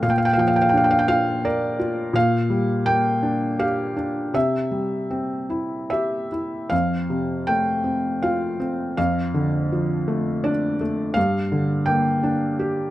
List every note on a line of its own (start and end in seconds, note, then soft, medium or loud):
0.02 2.11 A#2 medium
0.02 0.11 F5 medium
0.10 0.18 G5 medium
0.18 0.26 F5 medium
0.25 0.33 G5 medium
0.33 0.41 F5 medium
0.38 1.76 F3 medium
0.38 0.47 G5 medium
0.48 0.55 F5 medium
0.56 0.63 G5 medium
0.62 0.70 F5 medium
0.69 0.77 G5 medium
0.73 2.12 D4 medium
0.73 0.85 F5 medium
0.84 0.92 G5 medium
0.91 0.99 F5 medium
0.99 1.07 G5 medium
1.08 1.78 F4 medium
1.08 1.46 F5 medium
1.45 2.14 A#4 medium
1.45 2.18 D5 medium
1.79 2.14 F4 medium
2.13 4.30 A#2 medium
2.13 2.89 F5 medium
2.50 3.94 G3 medium
2.86 4.31 A#3 medium
2.86 3.62 G5 medium
3.23 3.95 D4 medium
3.59 4.32 G4 medium
3.59 4.31 F5 medium
3.97 4.33 D4 soft
4.34 6.66 C3 medium
4.34 5.89 E5 medium
4.71 6.27 G3 soft
5.10 6.67 C4 soft
5.50 6.30 E4 soft
5.90 6.69 G4 medium
5.90 6.73 E5 medium
6.32 6.70 E4 soft
6.70 8.95 F2 medium
6.70 7.49 F5 medium
7.10 8.57 C3 soft
7.47 8.95 A3 soft
7.47 8.19 G5 medium
7.84 8.58 C4 soft
8.23 8.96 F4 medium
8.23 8.96 F5 medium
8.60 8.97 C4 medium
8.97 11.12 F2 medium
8.97 10.49 F5 medium
9.34 10.76 D3 medium
9.72 11.12 F3 medium
10.08 10.79 A3 medium
10.44 11.14 D4 medium
10.44 11.17 D5 medium
10.81 11.15 A3 medium
11.14 12.90 G2 medium
11.14 11.88 F5 medium
11.52 12.90 D3 medium
11.86 12.90 A#3 medium
11.86 12.90 G5 medium
12.23 12.90 D4 medium
12.59 12.90 G4 medium